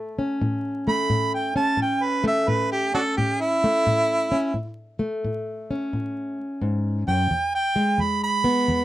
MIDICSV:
0, 0, Header, 1, 3, 480
1, 0, Start_track
1, 0, Tempo, 689655
1, 1247, Time_signature, 4, 2, 24, 8
1, 6157, End_track
2, 0, Start_track
2, 0, Title_t, "Harmonica"
2, 0, Program_c, 0, 22
2, 614, Note_on_c, 0, 83, 94
2, 921, Note_off_c, 0, 83, 0
2, 935, Note_on_c, 0, 79, 70
2, 1083, Note_off_c, 0, 79, 0
2, 1088, Note_on_c, 0, 81, 91
2, 1242, Note_off_c, 0, 81, 0
2, 1267, Note_on_c, 0, 79, 78
2, 1417, Note_on_c, 0, 71, 89
2, 1428, Note_off_c, 0, 79, 0
2, 1567, Note_off_c, 0, 71, 0
2, 1581, Note_on_c, 0, 76, 82
2, 1729, Note_on_c, 0, 71, 82
2, 1739, Note_off_c, 0, 76, 0
2, 1883, Note_off_c, 0, 71, 0
2, 1891, Note_on_c, 0, 67, 90
2, 2044, Note_off_c, 0, 67, 0
2, 2047, Note_on_c, 0, 62, 57
2, 2047, Note_on_c, 0, 66, 57
2, 2047, Note_on_c, 0, 69, 81
2, 2091, Note_off_c, 0, 66, 0
2, 2102, Note_off_c, 0, 62, 0
2, 2202, Note_off_c, 0, 69, 0
2, 2204, Note_on_c, 0, 67, 83
2, 2371, Note_on_c, 0, 64, 106
2, 2381, Note_off_c, 0, 67, 0
2, 3300, Note_off_c, 0, 64, 0
2, 4928, Note_on_c, 0, 79, 88
2, 5237, Note_off_c, 0, 79, 0
2, 5254, Note_on_c, 0, 79, 105
2, 5573, Note_on_c, 0, 83, 87
2, 5583, Note_off_c, 0, 79, 0
2, 5725, Note_off_c, 0, 83, 0
2, 5733, Note_on_c, 0, 83, 101
2, 6157, Note_off_c, 0, 83, 0
2, 6157, End_track
3, 0, Start_track
3, 0, Title_t, "Steel-string acoustic guitar"
3, 0, Program_c, 1, 25
3, 0, Note_on_c, 1, 45, 61
3, 0, Note_on_c, 1, 57, 59
3, 129, Note_on_c, 1, 61, 55
3, 252, Note_off_c, 1, 45, 0
3, 288, Note_on_c, 1, 45, 70
3, 606, Note_off_c, 1, 57, 0
3, 609, Note_on_c, 1, 57, 52
3, 735, Note_off_c, 1, 45, 0
3, 765, Note_on_c, 1, 45, 65
3, 1081, Note_off_c, 1, 61, 0
3, 1083, Note_on_c, 1, 61, 57
3, 1213, Note_off_c, 1, 45, 0
3, 1233, Note_on_c, 1, 45, 64
3, 1554, Note_off_c, 1, 57, 0
3, 1557, Note_on_c, 1, 57, 66
3, 1687, Note_off_c, 1, 45, 0
3, 1726, Note_on_c, 1, 45, 71
3, 2047, Note_off_c, 1, 61, 0
3, 2050, Note_on_c, 1, 61, 57
3, 2173, Note_off_c, 1, 45, 0
3, 2213, Note_on_c, 1, 45, 66
3, 2519, Note_off_c, 1, 57, 0
3, 2532, Note_on_c, 1, 57, 53
3, 2657, Note_off_c, 1, 45, 0
3, 2691, Note_on_c, 1, 45, 73
3, 2996, Note_off_c, 1, 61, 0
3, 3005, Note_on_c, 1, 61, 52
3, 3135, Note_off_c, 1, 45, 0
3, 3148, Note_off_c, 1, 61, 0
3, 3151, Note_off_c, 1, 57, 0
3, 3160, Note_on_c, 1, 45, 60
3, 3475, Note_on_c, 1, 57, 63
3, 3610, Note_off_c, 1, 45, 0
3, 3650, Note_on_c, 1, 45, 64
3, 3971, Note_on_c, 1, 61, 58
3, 4095, Note_off_c, 1, 45, 0
3, 4129, Note_on_c, 1, 45, 68
3, 4438, Note_off_c, 1, 57, 0
3, 4574, Note_off_c, 1, 45, 0
3, 4604, Note_on_c, 1, 44, 60
3, 4921, Note_off_c, 1, 44, 0
3, 4926, Note_on_c, 1, 42, 60
3, 5071, Note_off_c, 1, 61, 0
3, 5084, Note_off_c, 1, 42, 0
3, 5087, Note_on_c, 1, 40, 59
3, 5399, Note_on_c, 1, 56, 60
3, 5533, Note_off_c, 1, 40, 0
3, 5556, Note_on_c, 1, 40, 65
3, 5876, Note_on_c, 1, 59, 56
3, 6008, Note_off_c, 1, 40, 0
3, 6043, Note_on_c, 1, 40, 70
3, 6157, Note_off_c, 1, 40, 0
3, 6157, Note_off_c, 1, 56, 0
3, 6157, Note_off_c, 1, 59, 0
3, 6157, End_track
0, 0, End_of_file